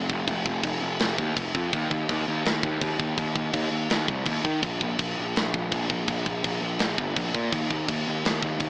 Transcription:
0.10 F1, kick
0.28 F1, kick, crash
0.46 F1, kick
0.63 F1, kick, crash
0.82 F1
0.99 F1, snare, crash
1.18 D#2, kick
1.36 F1, kick, crash
1.55 F2, kick
1.73 D#2, kick, crash
1.90 D#2, kick
2.09 D#2, kick, crash
2.28 D#2
2.45 D#2, snare, crash
2.63 D#2, kick
2.81 D#2, kick, crash
2.99 D#2, kick
3.17 D#2, kick, crash
3.36 D#2, kick
3.53 D#2, kick, crash
3.72 D#2
3.90 D#2, snare, crash
4.08 C2, kick
4.25 D#2, kick, crash
4.45 D#3, kick
4.62 A#1, kick, crash
4.81 A#1, kick
4.99 A#1, kick, crash
5.19 A#1
5.36 A#1, snare, crash
5.54 A#1, kick
5.72 A#1, kick, crash
5.90 A#1, kick
6.08 A#1, kick, crash
6.26 A#1, kick
6.44 A#1, kick, crash
6.62 A#1
6.79 A#1, snare, crash
6.98 G1, kick
7.16 A#1, kick, crash
7.34 A#2, kick
7.53 D#2, kick, crash
7.71 D#2, kick
7.88 D#2, kick, crash
8.08 D#2
8.25 D#2, snare, crash
8.42 D#2, kick
8.60 D#2, kick, crash

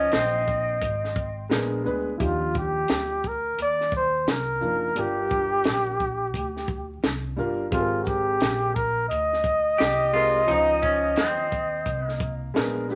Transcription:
Already playing: F3 C#4 D#4 C5 D#5
0.12 A#1 C4, snare, closed hi-hat
0.48 kick, closed hi-hat, shaker
0.81 G#1, kick, closed hi-hat
1.04 snare
1.16 kick, closed hi-hat, shaker
1.49 A#1 G#3 B3 D4 A#4, snare, closed hi-hat
1.84 D2 G#3 B3 D4 B4, shaker
2.17 D#2 F3 D4 D#4 E4 G4, kick, closed hi-hat
2.25 F4
2.54 kick, shaker
2.58 G4
2.88 D2, snare, closed hi-hat
3.23 kick, shaker
3.28 A#4
3.58 D#2, closed hi-hat
3.62 D5
3.81 snare
3.92 kick, shaker
3.96 C5
4.27 C2 A#4, snare, closed hi-hat
4.61 F#1 F3 D4 D#4 A#4, shaker
4.95 G1 G3 D4 F4 A#4, closed hi-hat
4.99 G4
5.29 kick, shaker
5.64 A#1, snare, closed hi-hat
6.00 kick, shaker
6.34 D2, kick, closed hi-hat
6.57 snare
6.68 kick, shaker
7.02 C2, snare, closed hi-hat
7.36 G1 G3 D4 F4 A#4, shaker
7.71 G#1 G#3 C4 F4 G4 A4, kick, closed hi-hat
7.80 A#4
8.03 F#4, kick, shaker
8.07 G4
8.40 A#1, snare, closed hi-hat
8.75 A#4, kick, closed hi-hat, shaker
9.09 D2 D#5, closed hi-hat
9.33 snare
9.44 kick, closed hi-hat, shaker
9.78 C2 G4, snare, closed hi-hat
10.12 G#3 C4 F4 G4 A#4, shaker
10.46 C#2 F3 C#4 D#4 C5, closed hi-hat
10.81 C#4, kick, shaker
11.16 D#2 C4, snare, closed hi-hat
11.52 kick, closed hi-hat, shaker
11.86 C2, kick, closed hi-hat
12.07 A#3, snare
12.20 kick, closed hi-hat, shaker
12.54 A#1 G#3 B3 D4 A#4, snare, closed hi-hat
12.88 G#3 B3 D4 G4, shaker

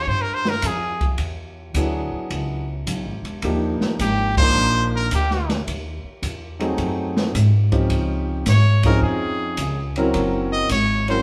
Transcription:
0.02 C#5
0.07 G2 C5, kick
0.22 A#4
0.34 C5
0.45 A#4, snare
0.62 F2 G#4, kick, hi-hat pedal, ride
1.01 kick, ride
1.18 E2, kick, ride
1.74 D2 F#3 B3 D4 E4 G#4, kick, hi-hat pedal, ride
2.12 muted upright bass stroke
2.30 C#2, kick, ride
2.87 B1, kick, hi-hat pedal, ride
3.05 G#1
3.22 E1, ride
3.42 D#2 F3 A#3 D4 D#4 G4, kick, ride
3.80 muted upright bass stroke, snare
3.99 G#1 G4, kick, hi-hat pedal, ride
4.37 F3 A#3 D4 D#4 A#4 C5, kick, crash
4.55 A#1
4.96 A#4
5.11 D2 G4, kick, hi-hat pedal, ride
5.31 snare
5.49 snare, ride
5.67 D#2, kick, ride
6.04 muted upright bass stroke
6.22 E2, kick, hi-hat pedal, ride
6.59 F#3 A3 C4 D#4 G#4, ride
6.78 F#2, kick, ride
7.17 snare
7.35 G#2, kick, hi-hat pedal, ride
7.72 F3 C4 C#4 D#4 G4, kick, ride
7.90 C#2, kick, ride
8.46 G#2 C#5, kick, snare, hi-hat pedal, ride
8.83 F3 C4 C#4 D#4 G#4 A#4, kick, ride
9.02 F2 G#4, kick
9.57 C#2, kick, hi-hat pedal, ride
9.96 F#3 C4 C#4 E4 A#4, ride
10.14 F#1, kick, ride
10.52 D#5
10.69 G#1 C#5, kick, hi-hat pedal, ride
11.08 F#3 C4 C#4 E4 A#4 C5, ride

